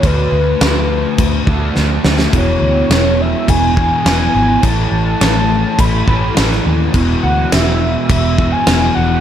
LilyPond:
<<
  \new Staff \with { instrumentName = "Soft synth lead" } { \time 4/4 \key e \mixolydian \tempo 4 = 104 b'2. r4 | cis''4. e''8 gis''4 gis''4 | a''2 b''4 r4 | r8 fis''8 e''4 e''8. gis''8. fis''8 | }
  \new Staff \with { instrumentName = "Distorted electric guitar" } { \clef bass \time 4/4 \key e \mixolydian <d a d'>2~ <d a d'>8 <d a d'>8 <d a d'>4 | <e, b, e>2~ <e, b, e>8 <e, b, e>8 <e, b, e>4 | <a, e a>2~ <a, e a>8 <a, e a>8 <a, e a>4 | <e, b, e>2~ <e, b, e>8 <e, b, e>8 <e, b, e>4 | }
  \new Staff \with { instrumentName = "Fingered electric bass" } { \clef bass \time 4/4 \key e \mixolydian d,8 d,8 d,4 d,8 d,8 d,8 d,8 | e,,8 d,8 e,,4 e,,4 e,,8 gis,,8 | a,,8 a,,8 a,,4 a,,8 a,,8 a,,8 dis,8 | e,,8 d,8 e,,4 e,,4 e,,8 e,,8 | }
  \new DrumStaff \with { instrumentName = "Drums" } \drummode { \time 4/4 <cymc bd>4 <cymc sn>4 <cymc bd>8 bd8 sn8 sn16 sn16 | <cymc bd>4 <cymc sn>4 <cymc bd>8 bd8 <cymc sn>4 | <cymc bd>4 <cymc sn>4 <cymc bd>8 bd8 <cymc sn>16 sn8. | <cymc bd>4 <cymc sn>4 <cymc bd>8 bd8 <cymc sn>4 | }
>>